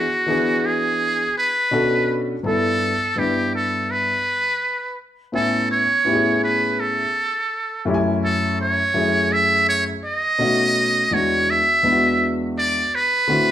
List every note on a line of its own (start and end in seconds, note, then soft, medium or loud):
0.00 0.67 F#4 loud
0.26 1.22 E3 medium
0.26 1.22 B3 medium
0.26 1.23 D4 medium
0.26 1.23 F#4 medium
0.26 1.23 G#4 medium
0.65 1.37 G#4 loud
1.38 2.17 B4 medium
1.71 2.34 B2 medium
1.71 2.34 C#4 medium
1.71 2.34 D4 medium
1.71 2.34 F#4 medium
1.71 2.35 A4 medium
2.43 2.91 G2 medium
2.43 2.92 B3 medium
2.43 2.92 D4 medium
2.43 2.92 E4 medium
2.43 2.93 A4 medium
2.43 3.20 A4 loud
3.16 4.11 G2 medium
3.16 4.12 B3 medium
3.16 4.12 D4 medium
3.16 4.12 E4 medium
3.16 3.54 G4 medium
3.16 4.12 B4 medium
3.55 3.92 A4 medium
3.91 4.98 B4 medium
5.32 5.80 A2 medium
5.32 5.81 B3 medium
5.32 5.81 C#4 medium
5.32 5.81 E4 medium
5.32 5.68 A4 medium
5.32 5.82 G#5 medium
5.71 6.39 C#5 loud
6.05 7.00 A2 medium
6.05 7.00 B3 medium
6.05 7.01 C#4 medium
6.05 7.01 E4 medium
6.05 6.15 G4 medium
6.13 7.05 G#4 medium
6.44 6.81 B4 medium
6.80 7.87 A4 medium
7.85 8.77 F#2 medium
7.85 8.77 A3 medium
7.85 8.77 C#4 medium
7.85 8.78 E4 medium
7.85 7.96 G4 medium
7.94 8.81 G#5 loud
8.24 8.57 A4 loud
8.61 9.34 C#5 medium
8.94 9.89 F#2 medium
8.94 9.90 A3 medium
8.94 9.90 C#4 medium
8.94 9.90 E4 medium
8.94 9.91 G#4 medium
9.33 9.68 E5 loud
9.69 9.85 C#5 loud
10.05 11.15 D#5 loud
10.38 11.01 B2 medium
10.38 11.01 A3 medium
10.38 11.02 C#4 medium
10.38 11.02 D#4 medium
10.38 11.02 F#4 medium
11.11 11.59 E2 medium
11.11 11.59 G#3 medium
11.11 11.60 B3 medium
11.11 11.60 D4 medium
11.11 11.60 F#4 medium
11.11 11.52 C#5 loud
11.50 12.33 E5 loud
11.83 12.79 E2 medium
11.83 12.79 G#3 medium
11.83 12.79 B3 medium
11.83 12.79 D4 medium
11.83 11.93 E4 medium
11.92 12.83 F#4 medium
12.58 12.96 D5 loud
12.95 13.52 B4 loud
13.28 13.52 D3 medium
13.28 13.52 A3 medium
13.28 13.52 C4 medium
13.28 13.52 E4 medium
13.28 13.52 F#4 medium